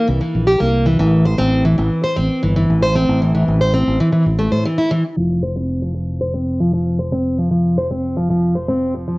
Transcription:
0.08 fingered electric bass C2, steel-string acoustic guitar E3
0.21 steel-string acoustic guitar E3
0.35 fingered electric bass A#1
0.47 steel-string acoustic guitar G4
0.60 fingered electric bass C2, steel-string acoustic guitar A#3
0.86 steel-string acoustic guitar E3
0.99 fingered electric bass A1, steel-string acoustic guitar E3
1.25 steel-string acoustic guitar C5
1.38 fingered electric bass A1, steel-string acoustic guitar C4
1.65 steel-string acoustic guitar E3
1.78 fingered electric bass A1, steel-string acoustic guitar E3
2.04 steel-string acoustic guitar C5
2.16 fingered electric bass A1, steel-string acoustic guitar C4
2.43 fingered electric bass G1, steel-string acoustic guitar E3
2.56 steel-string acoustic guitar E3
2.70 fingered electric bass A1
2.83 steel-string acoustic guitar C5
2.95 steel-string acoustic guitar C4
3.09 fingered electric bass A1
3.22 steel-string acoustic guitar E3
3.35 steel-string acoustic guitar E3
3.48 fingered electric bass A1
3.61 steel-string acoustic guitar C5
3.74 steel-string acoustic guitar C4
3.87 fingered electric bass A1
4.00 steel-string acoustic guitar E3
4.12 steel-string acoustic guitar E3
4.26 fingered electric bass A1
4.39 steel-string acoustic guitar A3
4.52 fingered electric bass A2, steel-string acoustic guitar C5
4.65 steel-string acoustic guitar E3
4.78 steel-string acoustic guitar E4
4.91 steel-string acoustic guitar E3
5.17 fingered electric bass F1, steel-string acoustic guitar F3
5.43 steel-string acoustic guitar C5
5.56 steel-string acoustic guitar C4
5.82 steel-string acoustic guitar F3
5.94 steel-string acoustic guitar F3
6.21 steel-string acoustic guitar C5
6.34 steel-string acoustic guitar C4
6.60 steel-string acoustic guitar F3
6.73 steel-string acoustic guitar F3
6.99 steel-string acoustic guitar C5
7.12 steel-string acoustic guitar C4
7.38 steel-string acoustic guitar F3
7.51 steel-string acoustic guitar F3
7.78 steel-string acoustic guitar C5
7.91 steel-string acoustic guitar C4
8.17 steel-string acoustic guitar F3
8.30 steel-string acoustic guitar F3
8.55 steel-string acoustic guitar C5
8.68 steel-string acoustic guitar C4
8.94 steel-string acoustic guitar F3
9.08 steel-string acoustic guitar F3

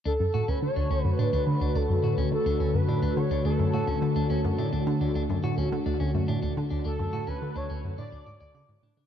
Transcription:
0.06 synth arpeggio sound D2, analog synth pad D3 A3 F#4, clean electric guitar D4, analog synth lead A4
0.20 synth arpeggio sound F#2
0.34 synth arpeggio sound A2, clean electric guitar F#4
0.48 synth arpeggio sound D2, clean electric guitar C#4, analog synth lead B4
0.62 synth arpeggio sound D3, analog synth lead C#5
0.76 synth arpeggio sound D2, clean electric guitar D4
0.91 synth arpeggio sound D2, clean electric guitar C#4
1.04 synth arpeggio sound F#2, analog synth lead B4
1.19 synth arpeggio sound A2, clean electric guitar D4, analog synth lead B4
1.33 synth arpeggio sound D2, clean electric guitar D4
1.47 synth arpeggio sound D3
1.61 synth arpeggio sound D2, clean electric guitar D4
1.75 synth arpeggio sound D2, clean electric guitar D4, analog synth lead A4
1.89 synth arpeggio sound F#2
2.04 synth arpeggio sound A2, clean electric guitar F#4
2.18 synth arpeggio sound D2, clean electric guitar C#4
2.32 synth arpeggio sound D3, analog synth lead A4
2.46 synth arpeggio sound D2, clean electric guitar D4
2.60 synth arpeggio sound D2, clean electric guitar C#4
2.74 synth arpeggio sound F#2, analog synth lead B4
2.88 synth arpeggio sound A2, clean electric guitar D4
3.02 synth arpeggio sound D2, clean electric guitar D4
3.17 synth arpeggio sound D3, analog synth lead C#5
3.31 synth arpeggio sound D2, clean electric guitar D4
3.45 synth arpeggio sound D2, clean electric guitar D4, analog synth lead A4
3.59 synth arpeggio sound F#2
3.73 synth arpeggio sound A2, clean electric guitar F#4
3.87 synth arpeggio sound D2, clean electric guitar C#4
4.02 synth arpeggio sound D3
4.16 synth arpeggio sound D2, clean electric guitar D4
4.30 synth arpeggio sound D2, clean electric guitar C#4
4.45 synth arpeggio sound F#2
4.58 synth arpeggio sound A2, clean electric guitar D4
4.73 synth arpeggio sound D2, clean electric guitar D4
4.87 synth arpeggio sound D3
5.01 synth arpeggio sound D2, clean electric guitar D4
5.15 synth arpeggio sound D2, clean electric guitar D4
5.30 synth arpeggio sound F#2
5.44 synth arpeggio sound A2, clean electric guitar F#4
5.58 synth arpeggio sound D2, clean electric guitar C#4
5.72 synth arpeggio sound D3
5.86 synth arpeggio sound D2, clean electric guitar D4
6.00 synth arpeggio sound D2, clean electric guitar C#4
6.15 synth arpeggio sound F#2
6.28 synth arpeggio sound A2, clean electric guitar D4
6.43 synth arpeggio sound D2, clean electric guitar D4
6.57 synth arpeggio sound D3
6.71 synth arpeggio sound D2, clean electric guitar D4
6.85 synth arpeggio sound D2, clean electric guitar D4, analog synth lead A4
6.99 synth arpeggio sound F#2
7.13 synth arpeggio sound A2, clean electric guitar F#4
7.27 synth arpeggio sound D2, clean electric guitar C#4, analog synth lead B4
7.42 synth arpeggio sound D3
7.56 synth arpeggio sound D2, clean electric guitar D4, analog synth lead C#5
7.70 synth arpeggio sound D2, clean electric guitar C#4
7.84 synth arpeggio sound F#2
7.98 synth arpeggio sound A2, clean electric guitar D4, analog synth lead D5
8.12 synth arpeggio sound D2, clean electric guitar D4
8.26 synth arpeggio sound G#2, clean electric guitar D5
8.41 synth arpeggio sound D2, clean electric guitar D5
8.54 synth arpeggio sound C#3, clean electric guitar D5
8.69 synth arpeggio sound G#2
8.83 synth arpeggio sound A2, clean electric guitar D4
8.97 synth arpeggio sound C#3, clean electric guitar D4

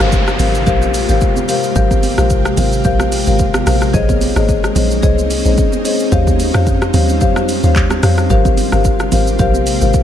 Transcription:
Already playing: ambient pad C3 G#3 A#3 F4 G4, downlifter
0.00 log drum bass G1, marimba G4 A#4 C5 F5, cross-stick, shaker
0.12 kick, shaker
0.28 cross-stick, shaker
0.39 log drum bass G#1, marimba G4 A#4 C5 F5, open hi-hat, high conga, low conga, shaker
0.55 shaker
0.67 log drum bass A#1, marimba G4 A#4 C5 F5, kick, low conga, shaker
0.82 high conga, shaker
0.94 open hi-hat, shaker
1.09 log drum bass G#1, marimba G4 A#4 C5 F5, shaker
1.21 kick, shaker
1.36 high conga, shaker
1.48 marimba G4 A#4 C5 F5, open hi-hat, shaker
1.63 shaker
1.76 log drum bass G#1, marimba G4 A#4 C5 F5, kick, low conga, shaker
1.91 kick, high conga, shaker
2.03 open hi-hat, high conga, shaker
2.18 log drum bass A#1, marimba G4 A#4 C5 F5, cross-stick, shaker
2.30 kick, shaker
2.45 cross-stick, shaker
2.57 log drum bass G#1, marimba G4 A#4 C5 F5, open hi-hat, high conga, low conga, shaker
2.73 shaker
2.85 log drum bass A#1, marimba G4 A#4 C5 F5, kick, low conga, shaker
3.00 cross-stick, high conga, shaker
3.12 open hi-hat, shaker
3.27 log drum bass G#1, marimba G4 A#4 C5 F5, shaker
3.39 kick, shaker
3.54 cross-stick, high conga, shaker
3.66 log drum bass A#1, marimba G4 A#4 C5 F5, cross-stick, open hi-hat, shaker
3.81 cross-stick, shaker
3.93 log drum bass A#1, ambient pad C4 C#4 D#4, marimba G#4 C5 C#5 D#5, kick, low conga, shaker
4.09 kick, high conga, shaker
4.21 open hi-hat, high conga, shaker
4.36 log drum bass G#1, marimba G#4 C5 C#5 D#5, cross-stick, shaker
4.49 kick, shaker
4.64 cross-stick, shaker
4.75 log drum bass A#1, marimba G#4 C5 C#5 D#5, open hi-hat, high conga, low conga, shaker
4.91 shaker
5.03 log drum bass C2, marimba G#4 C5 C#5 D#5, kick, low conga, shaker
5.18 high conga, shaker
5.31 open hi-hat, shaker
5.45 log drum bass A#1, marimba G#4 C5 C#5 D#5, shaker
5.58 kick, shaker
5.72 high conga, shaker
5.85 marimba G#4 C5 C#5 D#5, open hi-hat, shaker
6.00 shaker
6.12 log drum bass D#2, ambient pad G3 C4 F4, marimba G4 C5 C#5 F5, kick, low conga, shaker
6.27 kick, high conga, shaker
6.39 open hi-hat, high conga, shaker
6.54 log drum bass F2, marimba G4 C5 C#5 F5, cross-stick, shaker
6.67 kick, shaker
6.82 cross-stick, shaker
6.94 log drum bass D#2, marimba G4 C5 C#5 F5, open hi-hat, high conga, low conga, shaker
7.09 shaker
7.21 log drum bass F2, marimba G4 C5 C#5 F5, kick, low conga, shaker
7.36 cross-stick, high conga, shaker
7.49 open hi-hat, shaker
7.63 log drum bass D#2, marimba G4 C5 C#5 F5, shaker
7.76 kick, clap, shaker
7.90 cross-stick, high conga, shaker
8.03 log drum bass F2, marimba G4 C5 C#5 F5, cross-stick, open hi-hat, shaker
8.18 cross-stick, shaker
8.30 log drum bass G#1, ambient pad C3 G#3 A#3 F4 G4, marimba G4 A#4 C5 F5, kick, low conga, shaker
8.45 kick, high conga, shaker
8.57 open hi-hat, high conga, shaker
8.72 log drum bass G1, marimba G4 A#4 C5 F5, cross-stick, shaker
8.85 kick, shaker
9.00 cross-stick, shaker
9.12 log drum bass G#1, marimba G4 A#4 C5 F5, open hi-hat, high conga, low conga, shaker
9.27 shaker
9.39 log drum bass A#1, marimba G4 A#4 C5 F5, kick, low conga, shaker
9.54 high conga, shaker
9.67 open hi-hat, shaker
9.81 log drum bass G#1, marimba G4 A#4 C5 F5, shaker
9.94 kick, shaker

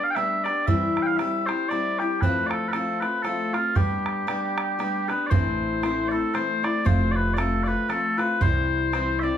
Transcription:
Already playing: steel-string acoustic guitar B3 D4 G4
0.04 bagpipes F5
0.11 bagpipes G5
0.15 steel-string acoustic guitar G3 B3 D4 G4, bagpipes E5, bodhran
0.44 steel-string acoustic guitar B3 D4 G4, bagpipes D5, bodhran
0.66 steel-string acoustic guitar G2 E3 G3 C4 E4 G4, bagpipes E5, bodhran
0.97 bodhran
1.02 bagpipes G5
1.06 bagpipes F5
1.17 steel-string acoustic guitar G3 C4 E4 G4, bagpipes E5, bodhran
1.46 steel-string acoustic guitar C4 E4 G4, bagpipes C5, bodhran
1.50 steel-string acoustic guitar G3
1.69 steel-string acoustic guitar G3 C4 E4, bagpipes D5, bodhran
1.73 steel-string acoustic guitar G4
1.99 steel-string acoustic guitar G3 C4 E4 G4, bagpipes G4, bodhran
2.21 steel-string acoustic guitar F3 A3 C4 F4, bagpipes B4, bodhran
2.46 bagpipes A4 D5
2.51 bodhran
2.68 bagpipes A4 B4
2.73 steel-string acoustic guitar F3 A3 C4 F4, bodhran
3.01 steel-string acoustic guitar A3 F4, bagpipes B4, bodhran
3.05 steel-string acoustic guitar C4
3.23 steel-string acoustic guitar F3 A3 C4, bagpipes A4, bodhran
3.27 steel-string acoustic guitar F4
3.53 steel-string acoustic guitar A3 C4 F4, bagpipes F4, bodhran
3.75 steel-string acoustic guitar G3 B3 D4 G4, bagpipes G4, bodhran
4.06 bodhran
4.27 steel-string acoustic guitar G3 B3 D4 G4, bodhran
4.58 bodhran
4.79 steel-string acoustic guitar G3 B3 D4 G4, bodhran
5.08 steel-string acoustic guitar B3 D4 G4, bagpipes B4, bodhran
5.26 bagpipes C5 D5
5.31 upright bass A1, steel-string acoustic guitar A2 E3 A3 C4 E4, bodhran
5.83 steel-string acoustic guitar E3 A3 C4 E4, bodhran
6.08 steel-string acoustic guitar E4, bagpipes A4 D5
6.13 steel-string acoustic guitar A3 C4
6.34 steel-string acoustic guitar E3 A3 C4 E4, bagpipes C5, bodhran
6.63 steel-string acoustic guitar A3 C4 E4, bagpipes D5, bodhran
6.85 upright bass F1, steel-string acoustic guitar F3 A3 C4 F4, bagpipes C5, bodhran
7.11 bagpipes D5
7.16 bagpipes B4
7.34 steel-string acoustic guitar F3 A3, bagpipes D5
7.38 steel-string acoustic guitar C4 F4, bagpipes A4, bodhran
7.63 steel-string acoustic guitar F4, bagpipes D5
7.67 steel-string acoustic guitar A3 C4, bagpipes B4
7.89 steel-string acoustic guitar F3 A3 C4 F4, bagpipes A4, bodhran
8.18 steel-string acoustic guitar A3 C4 F4, bagpipes B4, bodhran
8.41 upright bass C2, steel-string acoustic guitar C3 E3 G3 C4 E4, bagpipes C5, bodhran
8.92 steel-string acoustic guitar E3 G3 C4 E4, bodhran
9.19 steel-string acoustic guitar C4 E4, bagpipes D5 E5
9.24 steel-string acoustic guitar G3

